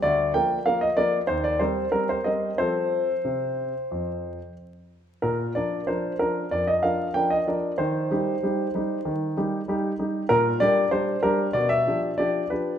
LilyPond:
\new Staff \with { instrumentName = "Grand piano" } { \time 4/4 \key bes \major \tempo 4 = 94 << { d''8 g''8 f''16 ees''16 d''8 c''16 d''16 c''8 bes'16 c''16 ees''8 | c''2. r4 | bes'8 d''8 c''8 bes'8 d''16 ees''16 f''8 g''16 ees''16 d''8 | c''2.~ c''8 r8 |
\key g \dorian bes'8 d''8 c''8 bes'8 d''16 e''8. d''8 b'8 | } \\ { d,8 <f bes bes'>8 <f bes bes'>8 <f bes bes'>8 ees,8 <g c' bes'>8 <g c'>8 <g c' bes'>8 | <f c' a'>4 c4 f,4 r4 | bes,8 <f d' bes'>8 <f d' bes'>8 <f d'>8 f,8 <f d' bes'>8 <f d' bes'>8 <f d' bes'>8 | ees8 <g ees' g'>8 <g ees' g'>8 <g ees' g'>8 ees8 <g ees' g'>8 <g ees' g'>8 <g ees' g'>8 |
bes,8 <g d' g'>8 <g d' g'>8 <g d' g'>8 b,8 <f d' g'>8 <f d' g'>8 <f d' g'>8 | } >> }